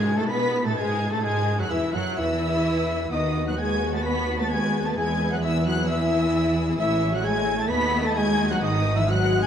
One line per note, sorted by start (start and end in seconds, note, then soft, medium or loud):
0.00 0.17 G#2 medium
0.00 0.16 G#3 medium
0.00 0.17 G#3 medium
0.00 0.16 G#4 medium
0.00 0.17 G#4 medium
0.00 0.16 G#5 medium
0.00 0.18 G#5 medium
0.00 0.18 G#6 loud
0.16 0.29 A2 medium
0.16 0.29 A3 medium
0.16 0.29 A4 medium
0.16 0.32 A5 medium
0.16 0.29 A5 medium
0.16 0.23 A6 medium
0.28 0.64 B2 medium
0.28 0.64 B3 medium
0.28 0.64 B4 medium
0.28 0.65 B4 medium
0.28 0.65 B5 medium
0.28 0.66 B5 medium
0.28 0.64 B6 loud
0.64 0.77 A2 medium
0.64 0.76 A3 medium
0.64 0.77 A4 medium
0.64 0.79 A5 medium
0.64 0.77 A5 medium
0.64 0.78 A6 medium
0.76 1.12 G#2 medium
0.76 1.12 G#3 medium
0.76 1.11 G#4 medium
0.76 1.12 G#4 medium
0.76 1.12 G#5 medium
0.76 1.11 G#5 medium
0.76 1.13 G#6 loud
1.11 1.24 A2 medium
1.11 1.23 A3 medium
1.11 1.24 A3 medium
1.11 1.23 A4 medium
1.11 1.24 A4 medium
1.11 1.23 A5 medium
1.11 1.24 A6 medium
1.23 1.59 G#2 medium
1.23 1.59 G#3 medium
1.23 1.58 G#4 medium
1.23 1.59 G#4 medium
1.23 1.59 G#5 medium
1.23 1.58 G#6 loud
1.58 1.71 F#2 medium
1.58 1.64 F#3 medium
1.58 1.71 F#3 medium
1.58 1.70 F#4 medium
1.58 1.65 F#4 medium
1.58 1.71 F#5 medium
1.58 1.72 F#5 medium
1.58 1.72 F#6 medium
1.70 1.79 E2 medium
1.70 1.94 E3 medium
1.70 1.79 E3 medium
1.70 1.94 E4 medium
1.70 1.94 E5 medium
1.70 1.95 E5 medium
1.70 1.94 E6 loud
1.93 2.02 F#2 medium
1.93 2.18 F#3 medium
1.93 2.18 F#4 medium
1.93 2.18 F#5 medium
1.93 2.17 F#5 medium
1.93 2.18 F#6 loud
2.17 3.09 E2 medium
2.17 3.10 E3 medium
2.17 3.12 E3 medium
2.17 3.10 E4 loud
2.17 3.12 E4 medium
2.17 3.11 E5 medium
2.17 3.10 E5 medium
2.17 3.10 E6 loud
3.11 4.93 D#2 medium
3.11 3.46 D#3 medium
3.11 6.76 B3 medium
3.11 3.46 D#4 medium
3.11 4.93 F#4 medium
3.11 6.76 B4 medium
3.11 3.46 D#5 medium
3.11 3.47 D#5 medium
3.11 3.46 D#6 medium
3.45 3.58 F#3 medium
3.45 3.53 F#4 medium
3.45 3.57 F#5 medium
3.45 3.60 F#5 medium
3.45 3.59 F#6 medium
3.58 3.93 G#3 medium
3.58 3.93 G#4 medium
3.58 3.93 G#5 medium
3.58 3.92 G#5 medium
3.58 3.93 G#6 loud
3.93 4.05 A3 medium
3.93 4.00 A4 medium
3.93 3.98 A5 medium
3.93 4.04 A5 medium
3.93 4.06 A6 medium
4.04 4.40 B3 loud
4.04 4.39 B4 medium
4.04 4.39 B5 loud
4.04 4.42 B5 medium
4.04 4.39 B6 loud
4.38 4.44 A3 medium
4.38 4.51 A4 medium
4.38 4.50 A5 medium
4.38 4.53 A5 medium
4.38 4.51 A6 loud
4.50 4.85 G#3 medium
4.50 4.85 G#4 medium
4.50 4.85 G#5 medium
4.50 4.86 G#5 medium
4.50 4.85 G#6 loud
4.85 4.90 A3 medium
4.85 4.97 A4 medium
4.85 4.90 A5 medium
4.85 4.98 A6 medium
4.96 6.76 E2 medium
4.96 5.31 G#3 medium
4.96 7.66 E4 medium
4.96 7.66 G#4 medium
4.96 5.31 G#4 loud
4.96 5.31 G#5 loud
4.96 5.31 G#5 medium
4.96 5.31 G#6 loud
5.30 5.43 F#3 medium
5.30 5.43 F#4 medium
5.30 5.36 F#5 medium
5.30 5.38 F#5 medium
5.30 5.44 F#6 medium
5.42 5.65 E3 medium
5.42 5.66 E4 medium
5.42 5.65 E5 medium
5.42 5.66 E5 medium
5.42 5.66 E6 loud
5.65 5.88 F#3 medium
5.65 5.77 F#4 medium
5.65 5.89 F#5 medium
5.65 5.88 F#5 medium
5.65 5.89 F#6 loud
5.87 6.78 E3 loud
5.87 6.77 E4 loud
5.87 6.54 E5 loud
5.87 6.52 E5 medium
5.87 6.77 E6 loud
6.78 7.68 A1 medium
6.78 7.13 E3 loud
6.78 8.58 A3 medium
6.78 7.12 E4 loud
6.78 7.66 C#5 medium
6.78 7.16 E5 loud
6.78 7.13 E5 loud
6.78 7.12 E6 loud
7.11 7.24 F#3 medium
7.11 7.23 F#4 medium
7.11 7.25 F#5 medium
7.11 7.23 F#5 medium
7.11 7.25 F#6 medium
7.22 7.58 G#3 loud
7.22 7.58 G#4 loud
7.22 7.58 G#5 loud
7.22 7.59 G#5 loud
7.22 7.59 G#6 loud
7.55 7.70 A3 medium
7.55 7.68 A4 loud
7.55 7.69 A5 medium
7.55 7.70 A5 medium
7.60 7.71 A6 loud
7.68 8.60 D#2 medium
7.68 8.04 B3 loud
7.68 9.47 D#4 medium
7.68 9.47 F#4 medium
7.68 8.04 B4 loud
7.68 8.57 D#5 medium
7.68 8.07 B5 loud
7.68 8.04 B5 loud
7.68 8.04 B6 loud
8.03 8.16 A3 loud
8.03 8.15 A4 loud
8.03 8.16 A5 loud
8.03 8.18 A5 medium
8.03 8.17 A6 loud
8.15 8.50 G#3 loud
8.15 8.50 G#4 loud
8.15 8.50 G#5 medium
8.15 8.51 G#5 loud
8.15 8.50 G#6 loud
8.50 8.62 F#3 medium
8.50 8.55 F#4 medium
8.50 8.62 F#5 medium
8.50 8.62 F#6 loud
8.61 9.47 G#1 loud
8.61 8.96 D#3 loud
8.61 9.47 G#3 medium
8.61 8.95 D#4 loud
8.61 9.47 B4 medium
8.61 8.97 D#5 medium
8.61 8.96 D#5 loud
8.61 8.96 D#6 loud
8.95 9.01 E3 medium
8.95 9.07 E4 loud
8.95 9.07 E5 medium
8.95 9.10 E5 medium
8.95 9.08 E6 loud
9.07 9.42 F#3 loud
9.07 9.42 F#4 loud
9.07 9.42 F#5 medium
9.07 9.43 F#5 loud
9.07 9.43 F#6 loud
9.41 9.47 G#3 loud
9.41 9.47 G#4 loud
9.41 9.47 G#5 loud
9.41 9.47 G#5 medium
9.41 9.47 G#6 loud